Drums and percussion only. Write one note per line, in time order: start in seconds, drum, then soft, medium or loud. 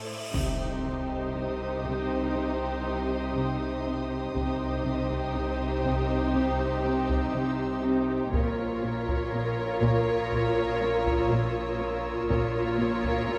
0.34 taiko soft
1.85 taiko soft
4.36 taiko medium
5.10 taiko medium
5.85 taiko medium
6.34 taiko medium
7.09 taiko medium
8.34 taiko medium
9.09 taiko medium
9.83 taiko medium
10.32 taiko medium
11.07 taiko medium
12.30 taiko medium
13.04 taiko medium